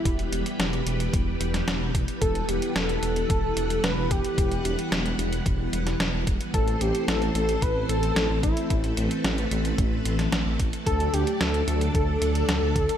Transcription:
Already playing: E3 G3 B3 E4 G4 B4
0.05 E1, kick, closed hi-hat
0.19 closed hi-hat
0.32 E1, closed hi-hat
0.46 closed hi-hat
0.59 E1, snare, closed hi-hat
0.73 closed hi-hat
0.87 E1, closed hi-hat
1.00 closed hi-hat
1.14 E1, kick, closed hi-hat
1.41 E1, closed hi-hat
1.54 snare, closed hi-hat
1.68 E1, snare, closed hi-hat
1.81 E1
1.95 E1, kick, closed hi-hat
2.08 closed hi-hat
2.21 E1 A4 F#5, kick, closed hi-hat
2.35 closed hi-hat
2.49 E1 G4, closed hi-hat
2.62 closed hi-hat
2.76 E1 A4, snare, closed hi-hat
2.89 closed hi-hat
3.03 E1 A4, closed hi-hat
3.16 closed hi-hat
3.30 E1, kick, closed hi-hat
3.57 E1, closed hi-hat
3.70 closed hi-hat
3.84 E1 B4, snare, closed hi-hat
3.98 E1
4.11 E1 G4, kick, closed hi-hat
4.25 closed hi-hat
4.38 E1, kick, closed hi-hat
4.52 closed hi-hat
4.65 E1, closed hi-hat
4.79 closed hi-hat
4.92 E1, snare, closed hi-hat
5.06 closed hi-hat
5.19 E1, closed hi-hat
5.33 closed hi-hat
5.46 E1, kick, closed hi-hat
5.73 E1, closed hi-hat
5.87 snare, closed hi-hat
6.00 E1, snare, closed hi-hat
6.14 E1
6.27 E1, kick, closed hi-hat
6.41 closed hi-hat
6.54 A1 A3 C4 A4 C5, kick, closed hi-hat
6.68 closed hi-hat
6.81 A1 G4, closed hi-hat
6.95 closed hi-hat
7.08 A1 A4, snare, closed hi-hat
7.22 closed hi-hat
7.35 A1 A4, closed hi-hat
7.49 closed hi-hat
7.62 A1 B4, kick, closed hi-hat
7.89 A1 A4, closed hi-hat
8.03 closed hi-hat
8.16 A1, snare, closed hi-hat
8.30 A1
8.43 A1 E4, kick, closed hi-hat
8.57 closed hi-hat
8.70 A1 B4, kick, closed hi-hat
8.84 closed hi-hat
8.97 A1, closed hi-hat
9.11 closed hi-hat
9.24 A1, snare, closed hi-hat
9.38 closed hi-hat
9.51 A1, closed hi-hat
9.65 closed hi-hat
9.78 A1, kick, closed hi-hat
10.05 A1, closed hi-hat
10.19 snare, closed hi-hat
10.32 A1, snare, closed hi-hat
10.46 A1
10.59 A1, kick, closed hi-hat
10.73 closed hi-hat
10.86 D2 F#3 D4 A4 D5, kick, closed hi-hat
11.00 closed hi-hat
11.13 D2 G4, closed hi-hat
11.27 closed hi-hat
11.40 D2 A4, snare, closed hi-hat
11.54 closed hi-hat
11.68 D2, closed hi-hat
11.81 closed hi-hat
11.95 D2 A4, kick, closed hi-hat
12.22 D2, closed hi-hat
12.35 closed hi-hat
12.49 D2, snare, closed hi-hat
12.62 D2
12.76 D2, kick, closed hi-hat
12.89 closed hi-hat

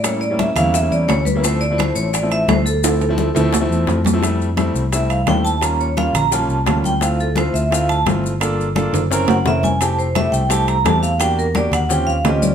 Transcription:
Already playing: A2
0.03 G3 A#3 C#4 E4 C#5, high bongo, high conga, high timbale, maracas
0.21 D5, high conga, maracas
0.30 G3 A#3 C#4 E4
0.39 E5, high bongo, high conga, high timbale, low timbale, maracas
0.56 E2 G3 A#3 C#4 E4 F5, high bongo, low conga, high timbale, maracas
0.74 E5, high bongo, high conga, maracas
0.82 G3 A#3 C#4 E4
0.91 E2 D5, high conga, maracas
1.08 D2 C#5, high bongo, low bongo, high conga, high timbale, low timbale, maracas
1.25 B4, high bongo, high conga, maracas
1.35 G3 A#3 C#4 E4
1.44 F3 A3 C4 E4 C5, high bongo, high timbale, maracas
1.61 D5, high conga, maracas
1.70 F3 A3 C4 E4
1.78 C5, high bongo, high conga, high timbale, low timbale, maracas
1.96 A1 C#5, high bongo, maracas
2.13 D5, high bongo, high conga, high timbale, maracas
2.22 F3 A3 C4 E4
2.31 E5, high bongo, high conga, high timbale, maracas
2.48 D2 C5, high bongo, low bongo, high conga, high timbale, low timbale, maracas
2.66 A4, high bongo, high conga, maracas
2.83 F3 A3 C4 E4, high bongo, high conga, high timbale, maracas
3.01 high conga, high timbale, maracas
3.09 F3 A3 C4 E4
3.18 high bongo, high conga, maracas
3.35 D2 F3 A3 C4 E4, low conga, high timbale, maracas
3.53 high bongo, low timbale, maracas
3.60 F3 A3 C4 E4
3.70 E2, high conga, maracas
3.87 F2, high bongo, low bongo, high conga, low timbale, maracas
4.05 high bongo, high conga, low timbale, maracas
4.13 F3 A3 C4 E4
4.22 G3 A3 C4 E4, high bongo, high conga, high timbale, maracas
4.40 high conga, maracas
4.57 G3 A3 C4 E4, high bongo, high conga, high timbale, low timbale, maracas
4.75 C2, high bongo, maracas
4.92 G3 A3 C4 E4 E5, high bongo, high conga, high timbale, maracas
5.10 F5, high bongo, high conga, high timbale, maracas
5.26 D#2 G3 A3 C4 E4 G5, high bongo, low bongo, high conga, high timbale, low timbale, maracas
5.45 A5, high bongo, high conga, maracas
5.61 G3 A#3 C#4 F4 A#5, high bongo, high conga, high timbale, maracas
5.80 C#5, high conga, maracas
5.97 G3 A#3 C#4 F4 F5, high bongo, high conga, high timbale, low timbale, maracas
6.13 A#1 A#5, high bongo, low conga, high timbale, maracas
6.31 G3 A#3 C#4 F4 A5, high bongo, high conga, maracas
6.49 C2, high conga, maracas
6.66 D2 G3 A#3 C#4 F4, high bongo, low bongo, high conga, high timbale, low timbale, maracas
6.84 G5, high bongo, high conga, maracas
7.01 A3 C4 E4 F4 F5, high bongo, high conga, high timbale, maracas
7.19 A4, high conga, maracas
7.36 A3 C4 E4 F4 C5, high bongo, high conga, high timbale, low timbale, maracas
7.54 D2 E5, high bongo, maracas
7.71 A3 C4 E4 F4 F5, high bongo, high conga, high timbale, maracas
7.89 A5, high conga, high timbale, maracas
8.06 G1 A3 C4 E4 F4, high bongo, low bongo, high conga, high timbale, low timbale, maracas
8.23 high bongo, high conga, maracas
8.40 A#3 D4 F4 A4, high bongo, high conga, high timbale, maracas
8.59 high conga, maracas
8.75 A#3 D4 F4 A4, high bongo, high conga, high timbale, low timbale, maracas
8.93 F#1, high bongo, low conga, high timbale, maracas
9.11 C4 C#4 E4 A#4, high bongo, high conga, maracas
9.28 F#1 F#5, high conga, low timbale, maracas
9.45 F1 C4 C#4 E4 A#4 E5, high bongo, low bongo, high conga, low timbale, maracas
9.63 G#5, high bongo, high conga, low timbale, maracas
9.81 A3 C4 E4 G4 A5, high bongo, high timbale, maracas
9.99 C5, high conga, maracas
10.15 A3 C4 E4 G4 E5, high bongo, high conga, high timbale, low timbale, maracas
10.32 C2 G5, high bongo, maracas
10.49 A3 C4 E4 G4 A5, high bongo, high conga, high timbale, maracas
10.68 A#5, high bongo, high conga, high timbale, maracas
10.84 E2 A3 C4 E4 G4 A5, high bongo, low bongo, high conga, high timbale, low timbale, maracas
11.02 F5, high bongo, high conga, maracas
11.19 A#3 D4 F#4 G4 G5, high bongo, high conga, high timbale, maracas
11.38 A#4, high conga, maracas
11.55 A#3 D4 F#4 G4 D5, high bongo, high conga, high timbale, low timbale, maracas
11.72 D#2 F#5, high bongo, low conga, high timbale, maracas
11.89 C4 C#4 F4 G4 G5, high bongo, high conga, low conga, maracas
12.07 D#2 F5, high conga, maracas
12.24 D2 C4 C#4 F4 G4 D#5, high bongo, low bongo, high conga, high timbale, low timbale, maracas
12.42 D5, high bongo, high conga, maracas

